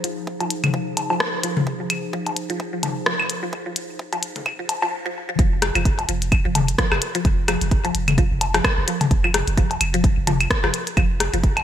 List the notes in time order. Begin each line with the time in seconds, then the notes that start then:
Already playing: F3 D#4 G#4 C5
0.04 F3, closed hi-hat
0.27 kick
0.40 F3, closed hi-hat, low woodblock
0.50 closed hi-hat
0.64 closed hi-hat, mid tom, claves
0.74 F3, kick
0.97 closed hi-hat, low woodblock
1.10 F3, low woodblock
1.20 kick, cross-stick
1.44 F3, closed hi-hat
1.57 mid tom
1.67 kick
1.80 F3
1.90 closed hi-hat, claves
2.13 F3, kick
2.27 closed hi-hat, low woodblock
2.37 closed hi-hat
2.50 F3, closed hi-hat
2.60 kick
2.73 F3
2.83 closed hi-hat, mid tom, low woodblock
3.06 F3, kick, cross-stick
3.20 claves
3.30 closed hi-hat
3.43 F3
3.53 kick
3.66 F3
3.76 closed hi-hat
3.99 kick
4.13 F3, closed hi-hat, low woodblock
4.23 closed hi-hat
4.36 closed hi-hat, mid tom
4.46 kick, claves
4.59 F3
4.69 closed hi-hat, low woodblock
4.82 F3, low woodblock
5.06 F3
5.29 F3
5.39 F1 F3, kick, closed hi-hat
5.62 cross-stick, closed hi-hat
5.75 F1 F3, closed hi-hat, claves
5.85 kick, closed hi-hat
5.99 closed hi-hat, low woodblock
6.09 F1 F3, closed hi-hat
6.22 closed hi-hat
6.32 kick, closed hi-hat, claves
6.45 F1 F3
6.55 closed hi-hat, mid tom, low woodblock
6.68 closed hi-hat
6.78 F3, kick, cross-stick, closed hi-hat
6.92 F1, cross-stick, claves
7.02 closed hi-hat
7.15 F3, closed hi-hat
7.25 F1, kick, closed hi-hat
7.48 F3, cross-stick, closed hi-hat, claves
7.61 F1, closed hi-hat
7.71 kick, closed hi-hat
7.85 F3, closed hi-hat, low woodblock
7.95 F1, closed hi-hat
8.08 closed hi-hat, mid tom, claves
8.18 F3, kick, closed hi-hat
8.31 F1
8.41 closed hi-hat, low woodblock
8.54 F3, cross-stick, closed hi-hat, low woodblock
8.64 kick, cross-stick, closed hi-hat, claves
8.78 F1
8.88 F3, closed hi-hat
9.01 closed hi-hat, mid tom, low woodblock
9.11 F1, kick, closed hi-hat
9.24 F3, claves
9.34 cross-stick, closed hi-hat
9.47 F1, closed hi-hat
9.57 F3, kick, closed hi-hat
9.71 closed hi-hat, low woodblock
9.81 F1, closed hi-hat, claves
9.94 F3, closed hi-hat
10.04 kick, closed hi-hat
10.17 F1
10.27 F3, closed hi-hat, mid tom, low woodblock
10.41 closed hi-hat, claves
10.51 kick, cross-stick, closed hi-hat
10.64 F1 F3, cross-stick
10.74 closed hi-hat
10.87 closed hi-hat
10.97 F1 F3, kick, closed hi-hat, claves
11.20 cross-stick, closed hi-hat
11.34 F1 F3, closed hi-hat
11.44 kick, closed hi-hat
11.57 closed hi-hat, claves, low woodblock